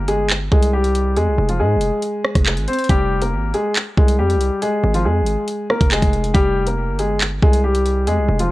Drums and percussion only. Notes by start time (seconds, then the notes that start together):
0.08 closed hi-hat
0.30 clap, closed hi-hat
0.52 kick
0.63 closed hi-hat
0.84 closed hi-hat
0.95 closed hi-hat
1.17 closed hi-hat
1.49 closed hi-hat
1.81 closed hi-hat
2.02 closed hi-hat
2.25 cross-stick
2.35 kick, cross-stick, closed hi-hat
2.46 clap, closed hi-hat
2.57 closed hi-hat
2.68 closed hi-hat
2.73 closed hi-hat
2.79 closed hi-hat
2.84 closed hi-hat
2.89 kick, closed hi-hat
3.22 closed hi-hat
3.54 closed hi-hat
3.75 clap, closed hi-hat
3.97 kick
4.08 closed hi-hat
4.30 closed hi-hat
4.41 closed hi-hat
4.62 closed hi-hat
4.94 closed hi-hat
5.26 closed hi-hat
5.48 closed hi-hat
5.70 cross-stick
5.81 kick, closed hi-hat
5.91 clap, closed hi-hat
6.02 kick, closed hi-hat
6.13 closed hi-hat
6.24 closed hi-hat
6.35 kick, closed hi-hat
6.67 closed hi-hat
6.99 closed hi-hat
7.20 clap, closed hi-hat
7.43 kick
7.53 closed hi-hat
7.75 closed hi-hat
7.86 closed hi-hat
8.07 closed hi-hat
8.39 closed hi-hat